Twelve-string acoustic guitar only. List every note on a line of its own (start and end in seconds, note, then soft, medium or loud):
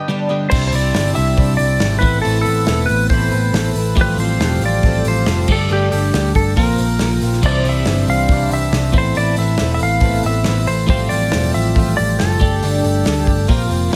0.08 0.30 G2 medium
0.08 0.30 D3 medium
0.08 0.30 G3 medium
0.08 0.30 B3 medium
0.08 0.28 D4 medium
0.08 0.28 G4 medium
0.29 0.49 G3 soft
0.29 0.51 B3 medium
0.29 0.50 D4 medium
0.29 0.51 G4 medium
0.50 0.72 C3 medium
0.50 0.72 G3 medium
0.50 0.73 D4 medium
0.50 0.71 E4 medium
0.50 0.69 G4 medium
0.70 0.93 D4 soft
0.70 0.94 E4 soft
0.70 0.93 G4 soft
0.92 1.15 G3 medium
0.92 1.15 D4 medium
0.92 1.14 E4 medium
0.92 1.13 G4 medium
1.14 1.36 D4 soft
1.14 1.36 E4 soft
1.14 1.36 G4 medium
1.36 1.58 C3 medium
1.36 1.59 G3 medium
1.36 1.58 D4 medium
1.36 1.57 E4 medium
1.36 1.55 G4 medium
1.57 1.79 D4 soft
1.57 1.80 E4 soft
1.57 1.79 G4 medium
1.80 2.02 G3 medium
1.80 2.02 D4 medium
1.80 2.01 E4 medium
1.80 2.01 G4 medium
2.01 2.22 A3 soft
2.01 2.23 C4 soft
2.01 2.23 E4 soft
2.01 2.23 B4 soft
2.22 2.44 A2 medium
2.22 2.44 E3 medium
2.22 2.45 A3 medium
2.22 2.45 C4 medium
2.22 2.44 E4 medium
2.22 2.43 B4 medium
2.44 2.63 A3 soft
2.44 2.64 C4 soft
2.44 2.65 E4 soft
2.44 2.66 B4 medium
2.64 2.87 A3 medium
2.64 2.87 C4 medium
2.64 2.87 E4 medium
2.64 2.86 B4 medium
2.87 3.11 A3 soft
2.87 3.10 C4 soft
2.87 3.10 E4 soft
2.87 3.09 B4 medium
3.11 3.32 A2 medium
3.11 3.32 E3 medium
3.11 3.32 A3 medium
3.11 3.32 C4 medium
3.11 3.30 E4 medium
3.11 3.29 B4 medium
3.30 3.52 A3 soft
3.30 3.53 C4 soft
3.30 3.53 E4 soft
3.30 3.52 B4 medium
3.53 3.75 A3 medium
3.53 3.75 C4 medium
3.53 3.76 E4 medium
3.53 3.75 B4 medium
3.77 3.95 A3 soft
3.77 3.96 C4 soft
3.77 3.98 E4 medium
3.77 3.97 B4 medium
3.96 4.18 A3 medium
3.96 4.18 C4 medium
3.96 4.18 F4 medium
3.96 4.16 G4 medium
4.17 4.40 C4 soft
4.17 4.40 F4 medium
4.17 4.39 G4 soft
4.39 4.61 A3 medium
4.39 4.62 C4 medium
4.39 4.62 F4 medium
4.39 4.61 G4 medium
4.62 4.84 C4 soft
4.62 4.84 F4 medium
4.62 4.83 G4 medium
4.85 5.06 A3 medium
4.85 5.06 C4 medium
4.85 5.06 F4 medium
4.85 5.04 G4 medium
5.05 5.26 C4 soft
5.05 5.27 F4 medium
5.05 5.27 G4 medium
5.26 5.48 A3 medium
5.26 5.49 C4 medium
5.26 5.49 F4 medium
5.26 5.48 G4 medium
5.48 5.68 G3 soft
5.48 5.69 D4 soft
5.48 5.69 G4 soft
5.48 5.70 A4 medium
5.69 5.91 G2 medium
5.69 5.91 D3 medium
5.69 5.91 G3 medium
5.69 5.92 D4 medium
5.69 5.91 G4 medium
5.69 5.90 A4 medium
5.91 6.11 G3 soft
5.91 6.13 D4 soft
5.91 6.13 G4 soft
5.91 6.13 A4 medium
6.12 6.34 G3 medium
6.12 6.35 D4 medium
6.12 6.36 G4 medium
6.12 6.34 A4 medium
6.36 6.56 G3 soft
6.36 6.57 D4 soft
6.36 6.57 G4 medium
6.36 6.57 A4 medium
6.56 6.78 A#3 medium
6.56 6.78 C4 medium
6.56 6.79 F4 medium
6.56 6.78 A#4 medium
6.79 7.01 F4 soft
6.79 7.00 A#4 medium
6.83 7.02 C4 soft
7.02 7.22 A#3 medium
7.02 7.23 C4 medium
7.02 7.22 F4 medium
7.02 7.21 A#4 medium
7.22 7.44 C4 medium
7.22 7.44 F4 medium
7.22 7.43 A#4 medium
7.44 7.65 C3 medium
7.44 7.65 E3 medium
7.44 7.66 G3 medium
7.44 7.66 C4 medium
7.44 7.65 D4 medium
7.44 7.64 G4 medium
7.65 7.85 G3 soft
7.65 7.87 C4 soft
7.65 7.87 D4 soft
7.65 7.86 G4 medium
7.86 8.08 G3 medium
7.86 8.09 C4 medium
7.86 8.09 D4 medium
7.86 8.07 G4 medium
8.08 8.31 G3 soft
8.08 8.30 C4 soft
8.08 8.31 D4 medium
8.08 8.30 G4 medium
8.30 8.52 C3 medium
8.30 8.52 E3 medium
8.30 8.52 G3 medium
8.30 8.52 C4 medium
8.30 8.52 D4 medium
8.30 8.52 G4 medium
8.53 8.72 G3 soft
8.53 8.73 C4 soft
8.53 8.74 D4 soft
8.53 8.74 G4 medium
8.74 8.95 G3 medium
8.74 8.95 C4 medium
8.74 8.96 D4 medium
8.74 8.94 G4 medium
8.94 9.15 A3 soft
8.94 9.16 C4 soft
8.94 9.16 E4 soft
8.94 9.16 B4 soft
9.15 9.37 A2 medium
9.15 9.38 E3 medium
9.15 9.37 A3 medium
9.15 9.36 C4 medium
9.15 9.35 E4 medium
9.15 9.34 B4 medium
9.35 9.57 A3 soft
9.35 9.57 C4 soft
9.35 9.58 E4 medium
9.35 9.58 B4 medium
9.58 9.80 A3 medium
9.58 9.80 C4 medium
9.58 9.78 E4 medium
9.58 9.77 B4 medium
9.78 10.01 A3 soft
9.78 10.01 C4 medium
9.78 10.01 E4 medium
9.78 10.01 B4 medium
10.01 10.23 A2 medium
10.01 10.24 E3 medium
10.01 10.24 A3 medium
10.01 10.24 C4 medium
10.01 10.23 E4 medium
10.01 10.22 B4 medium
10.23 10.43 A3 soft
10.23 10.44 C4 soft
10.23 10.45 E4 medium
10.23 10.45 B4 medium
10.44 10.67 A3 medium
10.44 10.67 C4 medium
10.44 10.67 E4 medium
10.44 10.66 B4 medium
10.67 10.86 A3 soft
10.67 10.87 C4 soft
10.67 10.89 E4 medium
10.67 10.89 B4 medium
10.87 11.10 A3 medium
10.87 11.10 C4 medium
10.87 11.10 F4 medium
10.87 11.09 G4 medium
11.10 11.31 C4 soft
11.10 11.32 F4 soft
11.10 11.32 G4 medium
11.30 11.53 A3 medium
11.30 11.54 C4 medium
11.30 11.53 F4 medium
11.30 11.51 G4 medium
11.52 11.75 C4 soft
11.52 11.75 F4 medium
11.52 11.75 G4 soft
11.75 11.97 A3 medium
11.75 11.98 C4 medium
11.75 11.97 F4 medium
11.75 11.97 G4 medium
11.98 12.18 C4 soft
11.98 12.19 F4 medium
11.98 12.19 G4 medium
12.18 12.40 A3 medium
12.18 12.41 C4 medium
12.18 12.41 F4 medium
12.18 12.40 G4 medium
12.41 12.62 G3 soft
12.41 12.63 D4 soft
12.41 12.62 G4 medium
12.41 12.62 A4 medium
12.63 12.84 G2 medium
12.63 12.84 D3 medium
12.63 12.84 G3 medium
12.63 12.84 D4 medium
12.63 12.84 G4 medium
12.63 12.82 A4 medium
12.83 13.03 G3 medium
12.83 13.04 D4 medium
12.83 13.05 G4 medium
12.83 13.05 A4 medium
13.04 13.26 G3 medium
13.04 13.27 D4 medium
13.04 13.25 G4 medium
13.04 13.24 A4 medium
13.25 13.47 G3 soft
13.25 13.48 D4 medium
13.25 13.48 G4 medium
13.25 13.48 A4 medium
13.47 13.69 A#3 medium
13.47 13.70 C4 medium
13.47 13.69 F4 medium
13.47 13.66 A#4 loud
13.68 13.90 C4 medium
13.68 13.91 F4 medium
13.68 13.90 A#4 medium
13.88 13.96 F3 medium
13.88 13.96 B3 medium
13.88 13.96 D4 medium
13.88 13.96 B4 medium